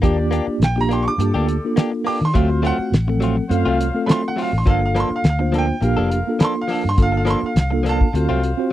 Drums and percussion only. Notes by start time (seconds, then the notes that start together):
0.03 kick, closed hi-hat
0.33 closed hi-hat
0.62 snare, closed hi-hat
0.79 snare
0.91 closed hi-hat
1.20 closed hi-hat
1.48 closed hi-hat
1.77 snare, closed hi-hat
2.06 open hi-hat
2.35 kick, closed hi-hat
2.65 closed hi-hat
2.93 snare, closed hi-hat
3.22 closed hi-hat
3.51 closed hi-hat
3.81 closed hi-hat
4.09 snare, closed hi-hat
4.38 open hi-hat
4.67 kick, closed hi-hat
4.96 closed hi-hat
5.24 snare, closed hi-hat
5.54 closed hi-hat
5.82 closed hi-hat
6.11 closed hi-hat
6.40 snare, closed hi-hat
6.68 open hi-hat
6.98 kick, closed hi-hat
7.27 closed hi-hat
7.56 snare, closed hi-hat
7.86 closed hi-hat
8.01 kick
8.15 closed hi-hat
8.43 closed hi-hat